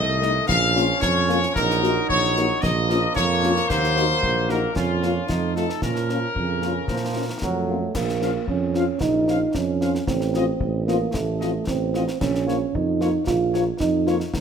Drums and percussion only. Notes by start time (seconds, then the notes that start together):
0.22 snare
0.49 concert bass drum, snare
0.76 snare
1.02 concert bass drum, snare
1.29 snare
1.43 snare
1.56 concert bass drum, snare
1.70 snare
1.84 snare
2.10 concert bass drum
2.36 snare
2.63 concert bass drum, snare
2.90 snare
3.16 concert bass drum, snare
3.43 snare
3.56 snare
3.70 concert bass drum, snare, crash
3.84 snare
3.97 snare
4.23 concert bass drum
4.49 snare
4.76 concert bass drum, snare
5.03 snare
5.29 concert bass drum, snare
5.56 snare
5.69 snare
5.82 concert bass drum, snare
5.96 snare
6.09 snare
6.36 concert bass drum
6.62 snare
6.88 concert bass drum, snare
7.42 concert bass drum, snare
7.95 concert bass drum, snare, crash
8.09 snare
8.22 snare
8.48 concert bass drum
8.74 snare
9.01 concert bass drum, snare
9.28 snare
9.55 concert bass drum, snare
9.81 snare
9.95 snare
10.07 concert bass drum, snare
10.21 snare
10.34 snare
10.60 concert bass drum
10.88 snare
11.14 concert bass drum, snare
11.41 snare
11.67 concert bass drum, snare
11.94 snare
12.08 snare
12.21 concert bass drum, snare, crash
12.35 snare
12.48 snare
12.75 concert bass drum
13.01 snare
13.27 concert bass drum, snare
13.54 snare
13.80 concert bass drum, snare
14.07 snare
14.20 snare
14.34 concert bass drum, snare